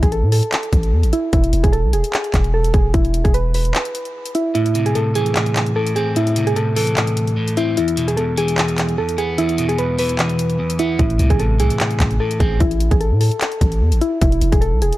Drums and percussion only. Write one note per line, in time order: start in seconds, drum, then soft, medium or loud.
0.03 kick medium
0.03 closed hi-hat medium
0.12 closed hi-hat medium
0.32 open hi-hat medium
0.43 closed hi-hat medium
0.52 clap loud
0.52 closed hi-hat medium
0.63 closed hi-hat medium
0.73 kick medium
0.73 closed hi-hat medium
0.83 closed hi-hat soft
1.03 closed hi-hat medium
1.13 closed hi-hat medium
1.33 kick loud
1.33 closed hi-hat medium
1.44 closed hi-hat medium
1.53 closed hi-hat medium
1.64 kick medium
1.64 closed hi-hat medium
1.73 closed hi-hat medium
1.93 closed hi-hat medium
2.04 closed hi-hat medium
2.13 clap loud
2.13 closed hi-hat medium
2.24 closed hi-hat medium
2.34 kick medium
2.34 clap loud
2.34 closed hi-hat medium
2.44 closed hi-hat soft
2.64 closed hi-hat medium
2.74 kick loud
2.74 closed hi-hat medium
2.94 kick loud
2.94 closed hi-hat medium
3.05 closed hi-hat medium
3.14 closed hi-hat medium
3.25 kick medium
3.25 closed hi-hat medium
3.34 closed hi-hat medium
3.54 open hi-hat medium
3.65 closed hi-hat medium
3.75 clap loud
3.75 closed hi-hat medium
3.85 closed hi-hat medium
3.95 closed hi-hat medium
4.05 closed hi-hat soft
4.26 closed hi-hat medium
4.35 closed hi-hat medium
4.55 closed hi-hat medium
4.66 closed hi-hat medium
4.75 closed hi-hat medium
4.86 closed hi-hat medium
4.95 closed hi-hat medium
5.15 closed hi-hat medium
5.26 closed hi-hat medium
5.36 clap loud
5.36 closed hi-hat medium
5.46 closed hi-hat medium
5.56 clap loud
5.56 closed hi-hat medium
5.66 closed hi-hat soft
5.87 closed hi-hat medium
5.96 closed hi-hat medium
6.16 closed hi-hat medium
6.27 closed hi-hat medium
6.36 closed hi-hat medium
6.47 closed hi-hat medium
6.56 closed hi-hat medium
6.76 open hi-hat medium
6.87 closed hi-hat medium
6.97 clap loud
6.97 closed hi-hat medium
7.07 closed hi-hat medium
7.17 closed hi-hat medium
7.27 closed hi-hat soft
7.48 closed hi-hat medium
7.57 closed hi-hat medium
7.77 closed hi-hat medium
7.88 closed hi-hat medium
7.97 closed hi-hat medium
8.08 closed hi-hat medium
8.17 closed hi-hat medium
8.38 closed hi-hat medium
8.48 closed hi-hat medium
8.58 clap loud
8.58 closed hi-hat medium
8.68 closed hi-hat medium
8.78 clap loud
8.78 closed hi-hat medium
8.89 closed hi-hat soft
9.09 closed hi-hat medium
9.18 closed hi-hat medium
9.38 closed hi-hat medium
9.49 closed hi-hat medium
9.58 closed hi-hat medium
9.69 closed hi-hat medium
9.78 closed hi-hat medium
9.99 open hi-hat medium
10.09 closed hi-hat medium
10.19 clap loud
10.19 closed hi-hat medium
10.29 closed hi-hat medium
10.39 closed hi-hat medium
10.50 closed hi-hat soft
10.70 closed hi-hat medium
10.79 closed hi-hat medium
10.99 kick loud
10.99 closed hi-hat medium
11.10 closed hi-hat medium
11.19 closed hi-hat medium
11.30 kick medium
11.30 closed hi-hat medium
11.40 closed hi-hat medium
11.60 closed hi-hat medium
11.70 closed hi-hat medium
11.80 clap loud
11.80 closed hi-hat medium
11.91 closed hi-hat medium
12.00 kick medium
12.00 clap loud
12.00 closed hi-hat medium
12.11 closed hi-hat soft
12.31 closed hi-hat medium
12.40 kick loud
12.40 closed hi-hat medium
12.60 kick loud
12.60 closed hi-hat medium
12.71 closed hi-hat medium
12.80 closed hi-hat loud
12.91 kick medium
12.91 closed hi-hat medium
13.01 closed hi-hat medium
13.21 open hi-hat medium
13.31 closed hi-hat medium
13.41 clap loud
13.41 closed hi-hat medium
13.52 closed hi-hat medium
13.61 kick medium
13.61 closed hi-hat medium
13.72 closed hi-hat soft
13.92 closed hi-hat medium
14.01 closed hi-hat medium
14.21 kick loud
14.21 closed hi-hat medium
14.32 closed hi-hat medium
14.41 closed hi-hat medium
14.52 kick medium
14.52 closed hi-hat medium
14.62 closed hi-hat medium
14.82 closed hi-hat medium
14.93 closed hi-hat medium